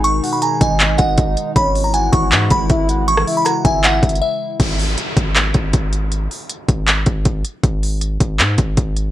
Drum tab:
CC |------------------------------------------------|------------------------------------------------|------------------------------------------------|x-----------------------------------------------|
HH |x-----o-----x-----x-----x-----x-----x-----x-----|x-----o-----x-----x-----x-----x-----x-----x-----|x-----o-----x-----x-----x-----x-x-x-------------|x-----o-----x-----x-----x-----x-----x-----x-----|
CP |------------------------x-----------------------|------------------------x-----------------------|------------------------x-----------------------|------------------------x-----------------------|
SD |------------------------------------------------|------------------------------------------------|---r--------r-----------------------------------|------------------------------------------------|
BD |------------------o-----------o-----o-----------|o-----------------o-----------o-----o-----------|------------------o-----------o-----------------|o-----------------o-----------o-----o-----------|

CC |------------------------------------------------|------------------------------------------------|
HH |x-----o-----x-----x-----x-----x-----x-----x-----|x-----o-----x-----x-----x-----x-----x-----x-----|
CP |------------------------x-----------------------|------------------------x-----------------------|
SD |------------------------------------------------|------------------------------------------------|
BD |------------------o-----------o-----o-----------|o-----------------o-----------o-----o-----------|